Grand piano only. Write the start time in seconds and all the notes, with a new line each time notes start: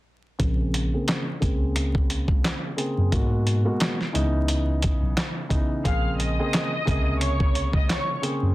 0.39 C#3 A#3 C4 G#4
0.93 C#3 A#3 C4 G#4
1.40 C#3 A#3 C4 G#4
2.76 C#3 A#3 C4 G#4
3.12 B2 G#3 A#3 F#4
3.64 B2 G#3 A#3 F#4
4.13 C#3 E3 B3 D#4
5.49 C#3 E3 B3 D#4
5.84 C#3 A#3 C4 G#4
6.39 C#3 A#3 C4 G#4
6.85 C3 C#3 A#3 G#4
8.22 C#3 A#3 C4 G#4